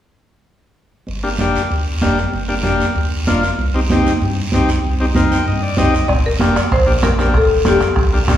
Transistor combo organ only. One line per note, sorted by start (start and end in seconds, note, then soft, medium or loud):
1.23 1.29 A#3 medium
1.23 1.29 D4 medium
1.23 1.29 G4 medium
1.40 1.62 A#3 medium
1.40 1.62 D4 medium
1.40 1.62 G4 medium
2.01 2.18 A#3 medium
2.01 2.18 D4 medium
2.01 2.19 G4 medium
2.48 2.54 A#3 medium
2.48 2.55 D4 medium
2.48 2.55 G4 medium
2.63 2.86 A#3 medium
2.63 2.86 D4 medium
2.63 2.86 G4 medium
3.27 3.44 A#3 medium
3.27 3.44 D4 medium
3.27 3.44 F4 medium
3.74 3.80 C4 medium
3.74 3.80 D#4 medium
3.74 3.80 G4 medium
3.92 4.13 C4 medium
3.92 4.13 D#4 medium
3.92 4.13 G4 medium
4.53 4.70 C4 medium
4.53 4.70 D#4 medium
4.53 4.70 G4 medium
5.00 5.05 C4 medium
5.00 5.06 D#4 medium
5.00 5.06 G4 medium
5.15 5.37 C4 medium
5.15 5.38 D#4 medium
5.15 5.38 A#4 medium
5.31 5.46 G5 medium
5.47 5.62 D#5 medium
5.63 5.77 D5 medium
5.78 5.94 C4 medium
5.78 5.94 D#4 medium
5.78 5.95 G4 medium
5.78 6.07 D#5 medium
6.40 6.57 A#3 medium
6.40 6.57 D4 medium
6.40 6.57 G4 medium
6.86 6.92 A#3 medium
6.86 6.93 D4 medium
6.86 6.93 G4 medium
7.02 7.08 A#3 medium
7.02 7.09 D4 medium
7.02 7.09 G4 medium
7.18 7.35 A#3 medium
7.18 7.35 D4 medium
7.18 7.35 G4 medium
7.65 7.82 A#3 medium
7.65 7.82 D4 medium
7.65 7.82 G4 medium
8.13 8.18 A#3 medium
8.13 8.19 D4 medium
8.13 8.19 G4 medium
8.28 8.33 A#3 medium
8.28 8.34 D4 medium
8.28 8.34 G4 medium